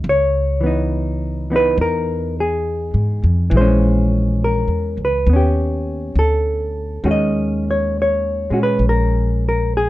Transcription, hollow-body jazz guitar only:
0.09 C#5
0.61 E3 B3
0.66 D#4
1.50 E3 B3 D#4
1.56 B4
1.81 A#4
2.40 G#4
3.50 E3
3.56 G#3 C5
3.61 C#4
4.44 A#4
5.05 B4
5.30 B3 C#4
5.36 G4
6.19 A4
7.04 D#3 G#3 C#4 F#4
7.11 D#5
7.71 C#5
8.02 C#5
8.50 G#3 C#4 F#4
8.63 B4
8.89 A#4
9.49 A#4
9.77 G#4

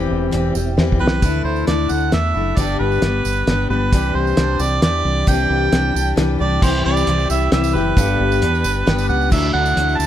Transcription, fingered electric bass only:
0.11 E1
0.33 E1
0.55 E1
0.78 E2
1.00 B1
1.22 D2
1.45 D2
1.68 D2
1.91 D2
2.13 E2
2.35 F#1
2.57 G1
2.80 G1
3.02 G1
3.25 G1
3.47 G1
3.70 G1
3.93 C2
4.15 C2
4.38 C2
4.60 C2
4.82 E2
5.05 C2
5.28 C2
5.50 C2
5.73 C2
5.95 C2
6.17 C2
6.41 C2
6.62 C2
6.86 C2
7.07 C2
7.30 C2
7.52 C2
7.75 F#1
7.97 G1
8.20 G1
8.42 E2
8.65 G1
8.87 G1
9.10 C#2
9.32 D2
9.54 D2
9.77 D2
9.99 D2

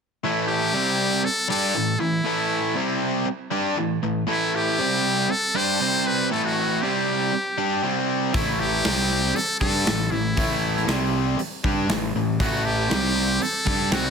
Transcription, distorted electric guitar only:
0.24 A2 E3 A3
0.73 C3 G3 C4
1.24 muted distorted electric guitar stroke
1.48 G3 D4 G4
1.74 A2 E3
2.00 A2 E3
2.26 A2 E3 A3
2.76 C3 G3 C4
3.27 muted distorted electric guitar stroke
3.51 G3 D4 G4
3.77 A2 E3
4.03 A2 E3
4.27 A2 E3 A3
4.79 C3 G3 C4
5.31 muted distorted electric guitar stroke
5.55 G3 D4 G4
5.80 C3 G3 C4
6.31 A2 E3 A3
6.82 C3 G3 C4
7.33 muted distorted electric guitar stroke
7.58 G3 D4 G4
7.82 C3 G3 C4
8.33 A2 E3 A3
8.84 C3 G3 C4
9.36 muted distorted electric guitar stroke
9.62 G3 D4 G4
9.87 A2 E3
10.12 A2 E3
10.37 A2 E3 A3
10.88 C3 G3 C4
11.39 muted distorted electric guitar stroke
11.64 G3 D4 G4
11.90 A2 E3
12.16 A2 E3
12.40 A2 E3 A3
12.89 C3 G3 C4
13.41 muted distorted electric guitar stroke
13.66 G3 D4 G4
13.90 C3 G3 C4

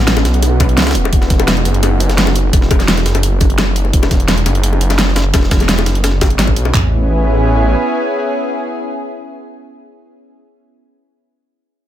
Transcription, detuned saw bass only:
Already playing: A1
0.25 B1
0.78 C#2
0.95 E1
1.13 E1
1.65 F#1
2.53 E1
3.06 F#1
3.94 E1
4.46 F#1
5.34 E1
5.86 F#1
6.39 G#1
6.57 B1
6.74 A1

